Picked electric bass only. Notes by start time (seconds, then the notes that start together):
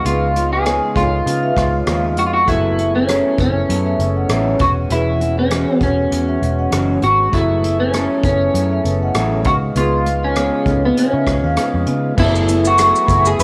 0.05 C#2
0.96 C#2
1.26 C#3
1.57 C#2
1.87 D#2
2.17 F2
2.48 F#1
3.38 F#1
3.69 F#2
3.99 F#1
4.29 A1
4.60 E1
4.90 E1
5.81 E1
6.12 E2
6.42 E1
6.73 F#1
7.03 G#1
7.33 F#1
8.24 F#1
8.54 F#2
8.85 F#1
9.15 A1
9.45 C#2
9.76 C#2
10.66 C#2
11.13 C#3
11.27 C#2
11.44 D#2
11.57 muted picked electric bass stroke
11.74 F2
11.87 C#3
12.18 F#1
13.08 F#1
13.39 F#2